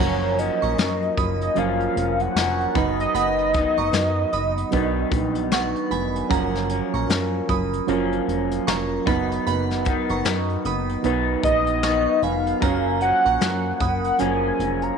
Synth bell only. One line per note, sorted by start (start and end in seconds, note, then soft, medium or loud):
0.00 0.37 F#5 medium
0.00 0.36 A#5 medium
0.62 1.00 A#5 medium
0.62 1.00 C#6 medium
1.17 1.40 B5 medium
1.17 1.40 D#6 medium
2.36 2.59 A#5 medium
2.36 2.59 C#6 medium
2.76 2.98 F#5 medium
2.76 2.98 B5 medium
3.15 3.53 F#5 medium
3.15 3.52 B5 medium
3.78 4.16 A#5 medium
3.78 4.15 C#6 medium
4.33 4.56 B5 medium
4.33 4.56 D#6 medium
5.52 5.75 F#5 medium
5.52 5.75 C#6 medium
5.91 6.14 G#5 medium
5.91 6.14 B5 medium
6.30 6.68 F#5 medium
6.30 6.68 A#5 medium
6.94 7.32 A#5 soft
6.94 7.31 C#6 medium
7.49 7.72 B5 medium
7.49 7.72 D#6 medium
8.67 8.90 A#5 medium
8.67 8.90 C#6 medium
9.07 9.30 F#5 medium
9.07 9.30 B5 medium
9.47 9.84 F#5 medium
9.47 9.84 B5 medium
10.10 10.48 A#5 medium
10.10 10.47 C#6 medium
10.66 10.88 B5 medium
10.66 10.88 D#6 medium
11.84 12.06 F#5 medium
11.84 12.06 C#6 medium
12.23 12.46 G#5 medium
12.23 12.45 B5 medium
12.62 13.00 F#4 medium
12.62 13.00 A#5 medium
13.26 13.63 A#5 medium
13.26 13.63 C#6 medium
13.81 14.04 B5 medium
13.81 14.04 D#6 medium